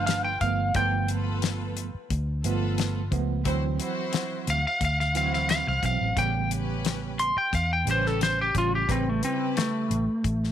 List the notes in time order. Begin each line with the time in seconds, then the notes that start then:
Already playing: G1 F3 A3 D4 F4 A4 B4
0.07 F5, snare, closed hi-hat
0.24 G5
0.41 G1 F3 A3 B3 F5, kick, closed hi-hat
0.74 G1 F3 A3 B3 F4 A4 D5 G5, kick, closed hi-hat
1.08 F4 A4 B4, closed hi-hat
1.42 snare, closed hi-hat
1.77 closed hi-hat
1.94 muted fingered electric bass stroke
2.10 D2, kick, closed hi-hat
2.44 G1 F3 A3 B3 F4 A4 B4, closed hi-hat
2.78 snare, closed hi-hat
3.11 C#2 F3 A3 B3, kick, closed hi-hat
3.44 D2 E3 F#3 C4 E4 F#4 C5, kick, closed hi-hat
3.79 E4 F#4 C5, closed hi-hat
4.13 snare, closed hi-hat
4.47 D2 F5, closed hi-hat
4.67 F5
4.81 D2 F5, kick, closed hi-hat
5.00 F5, snare
5.14 E3 F#3 C4 E4 F#4 C5 F5, closed hi-hat
5.34 F5, snare
5.49 F5, snare, closed hi-hat
5.67 C2 F5
5.83 B1 E3 F#3 C4 F5, kick, closed hi-hat
6.01 A1
6.16 A1 C#3 G3 B3 C#4 G4 B4 G5, kick, closed hi-hat
6.51 C#4 G4 B4, closed hi-hat
6.85 snare, closed hi-hat
7.19 C6, closed hi-hat
7.36 G5, muted fingered electric bass stroke
7.53 E2 F5, kick, closed hi-hat
7.73 G5
7.85 A1 C#3 G3 C#4 G4 B4, closed hi-hat
7.91 C5
8.06 A4, snare
8.21 C5, snare, closed hi-hat
8.41 G4
8.54 A1 C#3 G3 C#4 F4, kick, closed hi-hat
8.75 G4
8.87 A1 C#3 G3 C#4 G4 B4, kick, closed hi-hat
8.91 C4
9.09 A3
9.22 C4 E4 G4 B4, closed hi-hat
9.57 A3, snare, closed hi-hat
9.90 A1, closed hi-hat
10.24 A1, kick, closed hi-hat
10.44 snare